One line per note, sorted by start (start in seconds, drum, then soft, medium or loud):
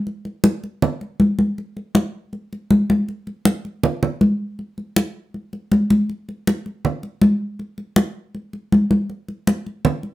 0.07 high conga soft
0.25 high conga soft
0.44 high conga loud
0.64 high conga soft
0.82 high conga soft
0.82 low conga medium
1.01 high conga soft
1.20 high conga medium
1.39 high conga medium
1.58 high conga soft
1.77 high conga soft
1.95 high conga loud
2.33 high conga soft
2.53 high conga soft
2.71 high conga medium
2.90 high conga medium
3.09 high conga soft
3.27 high conga soft
3.45 high conga medium
3.65 high conga soft
3.83 high conga soft
3.83 low conga medium
4.03 high conga soft
4.03 low conga medium
4.21 high conga medium
4.59 high conga soft
4.78 high conga soft
4.96 high conga medium
5.34 high conga soft
5.53 high conga soft
5.72 high conga medium
5.90 high conga medium
6.09 high conga soft
6.29 high conga soft
6.47 high conga medium
6.66 high conga soft
6.85 high conga soft
6.85 low conga medium
7.03 high conga soft
7.21 high conga medium
7.59 high conga soft
7.78 high conga soft
7.96 high conga medium
8.35 high conga soft
8.53 high conga soft
8.72 high conga medium
8.91 high conga medium
9.10 high conga soft
9.28 high conga soft
9.47 high conga medium
9.66 high conga soft
9.85 high conga soft
9.85 low conga medium
10.03 high conga soft